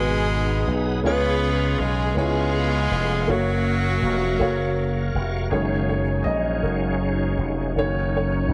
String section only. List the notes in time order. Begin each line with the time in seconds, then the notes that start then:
Already playing: B3 D#4 G#4
1.07 F4 G#4 B4
1.84 G#4
2.21 B3 F4 G#4
3.32 A#3 C#4 F#4